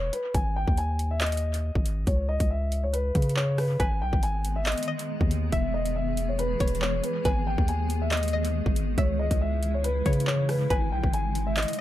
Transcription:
Already playing: 808-style bass E1
0.13 grand piano B4, closed hi-hat
0.34 808-style bass G#1, grand piano G#5, kick, closed hi-hat
0.56 grand piano G5
0.68 808-style bass D#2, kick
0.77 grand piano G#5, closed hi-hat
0.99 closed hi-hat
1.11 grand piano E5
1.20 grand piano D#5, clap, closed hi-hat
1.26 closed hi-hat
1.32 closed hi-hat
1.37 closed hi-hat
1.54 closed hi-hat
1.75 808-style bass G#1, kick
1.86 closed hi-hat
2.07 808-style bass C#2, grand piano C#5, kick, closed hi-hat
2.29 grand piano D#5
2.40 808-style bass C#2, kick, closed hi-hat
2.51 grand piano E5
2.72 closed hi-hat
2.84 grand piano C#5
2.93 grand piano B4, closed hi-hat
3.15 808-style bass C#3, kick, closed hi-hat
3.22 closed hi-hat
3.29 closed hi-hat
3.36 grand piano C#5, clap
3.58 grand piano B4, cross-stick, open hi-hat
3.80 808-style bass G#1, ambient pad D#3 G#3 B3 G#4, synth pluck B4, grand piano G#5, kick, closed hi-hat
4.01 808-style bass B1, grand piano G5
4.13 808-style bass G#1, kick
4.23 grand piano G#5, closed hi-hat
4.45 closed hi-hat
4.56 grand piano E5
4.66 grand piano D#5, clap, closed hi-hat
4.72 closed hi-hat
4.78 closed hi-hat
4.83 closed hi-hat
4.88 synth pluck D#5
4.99 closed hi-hat
5.21 808-style bass D#2, kick
5.31 closed hi-hat
5.52 808-style bass E1, ambient pad E3 G#3 B3, synth pluck E5, grand piano E5, kick, closed hi-hat
5.74 grand piano D#5
5.86 closed hi-hat
5.96 grand piano E5
6.17 closed hi-hat
6.29 grand piano C#5
6.39 grand piano B4, closed hi-hat
6.60 808-style bass E1, synth pluck C#5, kick, closed hi-hat
6.68 closed hi-hat
6.75 closed hi-hat
6.81 grand piano C#5, clap
7.03 grand piano B4, closed hi-hat
7.25 808-style bass G#1, ambient pad D#3, synth pluck B4, grand piano G#5, kick, closed hi-hat
7.47 grand piano G5
7.58 808-style bass D#2, kick
7.68 grand piano G#5, closed hi-hat
7.90 closed hi-hat
8.02 grand piano E5
8.11 grand piano D#5, clap, closed hi-hat
8.17 closed hi-hat
8.23 closed hi-hat
8.28 closed hi-hat
8.33 synth pluck D#5
8.45 closed hi-hat
8.66 808-style bass G#1, kick
8.76 closed hi-hat
8.97 808-style bass C#2, ambient pad C#3 E3 E4, grand piano C#5, synth pluck E5, kick, closed hi-hat
9.19 grand piano D#5
9.31 808-style bass C#2, kick, closed hi-hat
9.41 grand piano E5
9.63 closed hi-hat
9.74 grand piano C#5
9.84 grand piano B4, closed hi-hat
10.06 808-style bass C#3, synth pluck C#5, kick, closed hi-hat
10.13 closed hi-hat
10.20 closed hi-hat
10.27 grand piano C#5, clap
10.49 grand piano B4, cross-stick, open hi-hat
10.70 808-style bass G#1, ambient pad B2 D#3 D#4, synth pluck B4, grand piano G#5, kick, closed hi-hat
10.92 808-style bass B1, grand piano G5
11.04 808-style bass G#1, kick
11.13 grand piano G#5, closed hi-hat
11.35 closed hi-hat
11.47 grand piano E5
11.57 grand piano D#5, clap, closed hi-hat
11.62 closed hi-hat
11.68 closed hi-hat
11.73 closed hi-hat

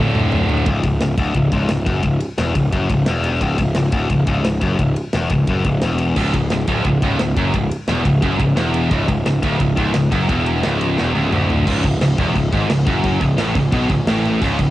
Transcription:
Already playing: distorted electric guitar D2 A2 D3, string section F#3 D4 A4
0.00 picked electric bass D1, distorted electric guitar A2 D3
0.15 picked electric bass D1, mid tom
0.32 picked electric bass D1, floor tom
0.49 picked electric bass D1, floor tom
0.66 picked electric bass C#1, distorted electric guitar C#2, kick, ride
0.83 picked electric bass C#1, distorted electric guitar C#2, kick, ride
1.00 picked electric bass C#1, distorted electric guitar C#2, snare, ride
1.17 picked electric bass D1, distorted electric guitar D2, kick, ride
1.34 picked electric bass C#1, distorted electric guitar C#2, kick, ride
1.52 picked electric bass C#1, distorted electric guitar C#2, kick, ride
1.69 picked electric bass C#1, distorted electric guitar C#2, snare, ride
1.86 picked electric bass F#1, distorted electric guitar F#2, kick, ride
2.03 picked electric bass C#1, distorted electric guitar C#2, kick, ride
2.20 ride
2.38 picked electric bass E1, distorted electric guitar E2, snare, ride
2.55 picked electric bass C#1, distorted electric guitar C#2, kick, ride
2.72 picked electric bass F#1, distorted electric guitar F#2, kick, ride
2.90 picked electric bass C#1, distorted electric guitar C#2, kick, ride
3.06 picked electric bass E1, distorted electric guitar E2, snare, ride
3.24 ride
3.41 picked electric bass C#1, distorted electric guitar C#2, kick, ride
3.58 picked electric bass C#1, distorted electric guitar C#2, kick, ride
3.75 picked electric bass C#1, distorted electric guitar C#2, snare, ride
3.92 picked electric bass D1, distorted electric guitar D2, kick, ride
4.10 picked electric bass C#1, distorted electric guitar C#2, kick, ride
4.27 picked electric bass C#1, distorted electric guitar C#2, kick, ride
4.44 picked electric bass C#1, distorted electric guitar C#2, snare, ride
4.61 picked electric bass F#1, distorted electric guitar F#2, kick, ride
4.79 picked electric bass C#1, distorted electric guitar C#2, kick, ride
4.96 ride
5.13 picked electric bass E1, distorted electric guitar E2, snare, ride
5.30 picked electric bass C#1, distorted electric guitar C#2, kick, ride
5.47 picked electric bass F#1, distorted electric guitar F#2, kick, ride
5.64 picked electric bass C#1, distorted electric guitar C#2, kick, ride
5.82 picked electric bass E1, distorted electric guitar E2, snare, ride
5.98 ride
6.16 picked electric bass C#1, distorted electric guitar C#2, kick, crash
6.34 picked electric bass C#1, distorted electric guitar C#2, kick, ride
6.50 picked electric bass C#1, distorted electric guitar C#2, snare, ride
6.68 picked electric bass D1, distorted electric guitar D2, kick, ride
6.85 picked electric bass C#1, distorted electric guitar C#2, kick, ride
7.02 picked electric bass C#1, distorted electric guitar C#2, kick, ride
7.19 picked electric bass C#1, distorted electric guitar C#2, snare, ride
7.37 picked electric bass F#1, distorted electric guitar F#2, kick, ride
7.54 picked electric bass C#1, distorted electric guitar C#2, kick, ride
7.71 ride
7.88 picked electric bass E1, distorted electric guitar E2, snare, ride
8.05 picked electric bass C#1, distorted electric guitar C#2, kick, ride
8.22 picked electric bass F#1, distorted electric guitar F#2, kick, ride
8.40 picked electric bass C#1, distorted electric guitar C#2, kick, ride
8.56 picked electric bass E1, distorted electric guitar E2, snare, ride
8.74 ride
8.91 picked electric bass C#1, distorted electric guitar C#2, kick, ride
9.08 picked electric bass C#1, distorted electric guitar C#2, kick, ride
9.26 picked electric bass C#1, distorted electric guitar C#2, snare, ride
9.42 picked electric bass D1, distorted electric guitar D2, kick, ride
9.59 picked electric bass C#1, distorted electric guitar C#2, kick, ride
9.76 picked electric bass C#1, distorted electric guitar C#2, kick, ride
9.94 picked electric bass C#1, distorted electric guitar C#2, snare, ride
10.11 picked electric bass F#1, distorted electric guitar F#2, kick, ride
10.29 picked electric bass E1, distorted electric guitar E2, kick, ride
10.46 ride
10.63 picked electric bass C#1, distorted electric guitar C#2, snare, ride
10.81 ride
10.98 picked electric bass E1, distorted electric guitar E2, snare
11.15 picked electric bass C#1, distorted electric guitar C#2, high tom
11.32 picked electric bass D1, distorted electric guitar D2, mid tom
11.50 floor tom
11.67 picked electric bass C#1, distorted electric guitar C#2, string section E3 C#4 G#4, kick, crash
11.84 picked electric bass C#1, distorted electric guitar C#2, kick, crash
12.01 picked electric bass C#1, distorted electric guitar C#2, snare, crash
12.18 picked electric bass E1, distorted electric guitar E2, kick, crash
12.35 picked electric bass C#1, distorted electric guitar C#2, kick, crash
12.53 picked electric bass G#1, distorted electric guitar G#2, kick, crash
12.69 picked electric bass C#1, distorted electric guitar C#2, snare, crash
12.86 picked electric bass F#1, distorted electric guitar F#2, kick, crash
13.04 kick, crash
13.21 picked electric bass C#1, distorted electric guitar C#2, kick, crash
13.38 picked electric bass A1, distorted electric guitar A2, snare, crash
13.55 picked electric bass C#1, distorted electric guitar C#2, kick, crash
13.72 picked electric bass B1, distorted electric guitar B2, kick, crash
13.90 picked electric bass C#1, distorted electric guitar C#2, kick, crash
14.07 picked electric bass A1, distorted electric guitar A2, snare, crash
14.25 crash
14.42 picked electric bass C#1, distorted electric guitar C#2, kick, crash
14.59 picked electric bass C#1, distorted electric guitar C#2, kick, crash

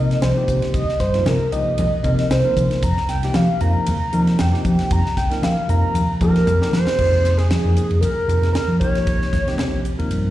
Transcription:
Already playing: fingered electric bass C3, tine electric piano C3 F3 A#3, analog synth lead D#5
0.00 tine electric piano D#4 A#4
0.11 snare, ride
0.22 fingered electric bass C2, analog synth lead C5, snare, hi-hat pedal, ride, high conga
0.35 tine electric piano C3 F3 A#3 D#4 G4
0.48 fingered electric bass C3, kick, hi-hat pedal, ride
0.62 snare, ride
0.74 fingered electric bass C2, analog synth lead D#5, kick, hi-hat pedal, ride, muted conga
0.89 muted fingered electric bass stroke, snare
1.00 fingered electric bass G2, analog synth lead C5, kick, snare, hi-hat pedal, ride, muted conga
1.13 tine electric piano C3 F3 A#3 D#4 F4, snare, ride
1.26 fingered electric bass C3, analog synth lead A#4, snare, hi-hat pedal, ride, high conga
1.51 fingered electric bass C2, tine electric piano C3 F3 A#3 D#4 G4, analog synth lead D#5, hi-hat pedal, ride
1.78 fingered electric bass A#1, hi-hat pedal, ride, muted conga, high conga, low conga
2.03 tine electric piano C3 F3 A#3 D#4 A#4, fingered electric bass C3, kick, hi-hat pedal, ride, low conga
2.19 snare, ride
2.31 fingered electric bass C2, analog synth lead C5, snare, hi-hat pedal, ride
2.43 tine electric piano C3 F3 A#3 D#4 A#4
2.57 fingered electric bass C3, kick, hi-hat pedal, ride, muted conga, high conga
2.71 snare, ride
2.82 fingered electric bass F2, analog synth lead A#5, kick, hi-hat pedal, ride
2.97 muted fingered electric bass stroke, snare
3.08 fingered electric bass C2, analog synth lead G5, snare, hi-hat pedal, ride, muted conga
3.23 tine electric piano C3 F3 A#3 D#4 G4, snare, ride
3.34 fingered electric bass F3, analog synth lead F5, snare, hi-hat pedal, ride, high conga
3.60 fingered electric bass F2, tine electric piano C3 F3 A#3 D#4 A#4, analog synth lead A#5, hi-hat pedal, ride
3.86 fingered electric bass D#2, hi-hat pedal, ride, muted conga, high conga
4.13 tine electric piano C3 F3 A#3 D#4 A#4, fingered electric bass F3, hi-hat pedal, ride
4.27 snare, ride
4.39 fingered electric bass F2, analog synth lead G5, snare, hi-hat pedal, ride, high conga
4.51 tine electric piano C3 F3 A#3 D#4 G4, snare
4.65 fingered electric bass F3, kick, hi-hat pedal, ride
4.79 snare, ride
4.91 fingered electric bass F2, analog synth lead A#5, kick, hi-hat pedal, ride, muted conga
5.05 muted fingered electric bass stroke, snare
5.17 fingered electric bass C2, analog synth lead G5, kick, snare, hi-hat pedal, ride, muted conga
5.30 tine electric piano C3 F3 A#3 D#4 A#4, snare, ride
5.42 fingered electric bass F3, analog synth lead F5, snare, hi-hat pedal, ride, high conga
5.67 fingered electric bass F2, tine electric piano C3 F3 A#3 D#4 A#4, analog synth lead A#5, hi-hat pedal, ride
5.94 fingered electric bass D#2, hi-hat pedal, ride, muted conga, high conga
6.20 tine electric piano C3 F3 A#3 D#4 G4, fingered electric bass F3, flute A#4, analog synth lead A#4, kick, hi-hat pedal, ride, low conga
6.36 snare, ride
6.46 fingered electric bass F2, hi-hat pedal, high tom
6.59 tine electric piano C3 F3 A#3 D#4 G4, snare
6.72 fingered electric bass F3, flute C5, analog synth lead C5, snare, hi-hat pedal, muted conga, high conga
6.87 snare
6.98 fingered electric bass F2, tine electric piano C3 F3 A#3 D#4 G#4, kick, crash, muted conga
7.25 snare, hi-hat pedal, ride, muted conga
7.37 analog synth lead G#4, flute G#4, snare, ride
7.50 snare, hi-hat pedal, ride, high conga
7.63 fingered electric bass F2, tine electric piano C3 F3 A#3 D#4 G#4
7.77 hi-hat pedal, ride
7.91 fingered electric bass F2, ride
8.01 fingered electric bass C2, analog synth lead A#4, flute A#4, hi-hat pedal, ride, muted conga, high conga
8.27 fingered electric bass F2, tine electric piano C3 F3 A#3 D#4 G#4, hi-hat pedal, ride
8.42 fingered electric bass F2, snare, ride
8.53 analog synth lead A#4, flute A#4, snare, hi-hat pedal, ride, muted conga, high conga
8.68 fingered electric bass F3
8.80 fingered electric bass A#1, tine electric piano C3 F3 A#3 D#4 G4, analog synth lead C#5, flute C#5, kick, hi-hat pedal, ride
8.95 snare, ride
9.07 kick, hi-hat pedal, ride, muted conga
9.22 snare
9.33 fingered electric bass D#2, kick, snare, hi-hat pedal, ride, muted conga, high conga
9.46 tine electric piano C3 F3 A#3 D#4 G4, snare, ride
9.58 muted fingered electric bass stroke, snare, hi-hat pedal, ride, high conga, low conga
9.73 fingered electric bass A#1
9.85 hi-hat pedal, ride
9.98 fingered electric bass D#2, tine electric piano C3 F3 A#3 D#4 A#4, ride
10.10 fingered electric bass G2, hi-hat pedal, ride, muted conga

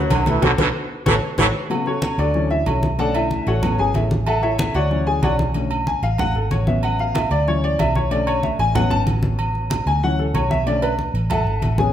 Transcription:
Already playing: trombone section F#2 F#3, upright piano F#3 F#4 F#5
0.10 fingered electric bass B1, baritone saxophone D3, cowbell, high conga, low agogo
0.26 trombone section E3 E4, upright piano A3 A4 B4, cowbell, high conga
0.42 fingered electric bass B1, trombone section B2 D3 F#3, baritone saxophone D3, upright piano F#4 A4 B4, cowbell, high conga, high timbale
0.58 fingered electric bass B1, trombone section B2 D3 F#3, baritone saxophone D3, upright piano F#4 A4 B4, cowbell, high conga, high timbale
1.06 fingered electric bass A1, baritone saxophone E3, trombone section E3 F#3 A3, upright piano F#4 A4 C#5, cowbell, high conga, high timbale
1.38 fingered electric bass A1, trombone section E3 F#3 A3, baritone saxophone E3, upright piano F#4 A4 C#5, cowbell, high conga, high timbale
1.70 upright piano C#3 F#3 B3 F#4 A4 C#5 F#5, high conga, low agogo
1.86 upright piano C#4 F#4 A4 C#5, high conga
2.02 high conga, low agogo
2.18 fingered electric bass D2, upright piano D4 F#4 A4 D5, low agogo
2.34 upright piano E3 F#3 C#4, high conga
2.50 upright piano E4 E5, high conga
2.66 fingered electric bass B1, upright piano C#4 F#4 A4 C#5, high conga, low agogo
2.83 high conga
2.98 upright piano D3 A3 C#4 A4 D5 F#5 A5, high conga, low agogo
3.15 upright piano E4 E5, high conga, low agogo
3.31 high conga
3.47 fingered electric bass A1, upright piano F#4 A4 C#5 F#5, high conga, low agogo
3.63 upright piano F#3 B3 C#4, high conga, low conga, low agogo
3.79 fingered electric bass G#1, upright piano G#4 G#5, high conga
3.94 fingered electric bass A1, upright piano E4 A4 C#5 E5, high conga, low agogo
4.11 high conga
4.26 upright piano A4 E5 F#5 A5, high conga, low agogo
4.42 upright piano E4 A4 C#5 E5, high conga
4.58 high conga, low agogo
4.74 fingered electric bass D2, upright piano F#4 C#5 D5 F#5, low agogo
4.90 upright piano E3 F#3 C#4, high conga
5.07 upright piano G#4 G#5, high conga
5.23 fingered electric bass B1, upright piano F#4 C#5 D5 F#5, high conga, low agogo
5.39 high conga
5.54 upright piano D3 A3 C#4, high conga, low agogo
5.71 high conga, low agogo
5.87 upright piano G#5, high conga
6.02 fingered electric bass A1, upright piano F5, high conga, low agogo
6.18 upright piano F#5, high conga, low conga, low agogo
6.35 fingered electric bass G#1, upright piano A4, high conga
6.51 fingered electric bass A1, upright piano C#5, high conga, low agogo
6.67 upright piano F#3 B3 C#4 E5, high conga
6.83 upright piano F#5, high conga, low agogo
6.99 upright piano F5, high conga
7.15 upright piano E5, high conga, low agogo
7.31 fingered electric bass D2, upright piano D5, low agogo
7.47 upright piano E3 F#3 C#4 C#5, high conga
7.64 upright piano D5, high conga
7.79 fingered electric bass B1, upright piano E5, high conga, low timbale, low agogo
7.95 upright piano C#5, high conga
8.11 upright piano D3 A3 C#4 D5, high conga, low agogo
8.27 upright piano C#5, high conga, low agogo
8.43 upright piano E5, high conga
8.59 fingered electric bass A1, upright piano G#5, high conga, low agogo
8.75 upright piano F#3 B3 C#4 F#5, high conga, low conga, low agogo
8.90 fingered electric bass G#1, upright piano A5, high conga, low conga
9.06 fingered electric bass A1, high conga, low agogo
9.23 high conga
9.39 high conga, low agogo
9.55 high conga
9.70 high conga, low agogo
9.86 fingered electric bass D2, upright piano G#5, low agogo
10.03 upright piano E3 F#3 C#4 F#5, high conga
10.19 upright piano A4, high conga
10.34 fingered electric bass B1, upright piano C#5, high conga, low agogo
10.51 upright piano E5, high conga
10.66 upright piano D3 A3 C#4 D5, high conga, low agogo
10.82 upright piano B4, high conga, low agogo
10.99 high conga
11.14 fingered electric bass A1, high conga, low agogo
11.30 upright piano A4 E5 F#5 A5, high conga, low conga, low agogo
11.46 fingered electric bass G#1, high conga
11.62 fingered electric bass A1, high conga, low agogo
11.78 upright piano F#3 B3 C#4 G#4 G#5, high conga

